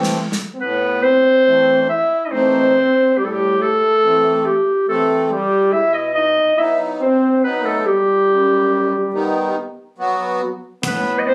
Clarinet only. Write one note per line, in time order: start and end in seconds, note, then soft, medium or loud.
0.61 1.05 B4 loud
1.03 1.89 C5 loud
1.89 2.27 E5 loud
2.25 2.33 D#5 medium
2.31 3.19 C5 loud
3.17 3.26 G4 loud
3.24 3.33 A4 medium
3.32 3.63 G4 loud
3.61 4.47 A4 loud
4.45 4.88 G4 medium
4.89 5.24 A4 loud
5.24 5.32 A4 medium
5.31 5.74 G4 loud
5.72 5.95 E5 loud
5.94 6.15 D#5 loud
6.15 6.60 D#5 loud
6.58 6.80 E5 loud
7.01 7.41 C5 medium
7.44 7.67 B4 loud
7.66 7.88 A4 medium
7.86 9.56 G4 loud
10.87 11.20 B4 loud
11.19 11.29 D#5 medium
11.27 11.35 C5 loud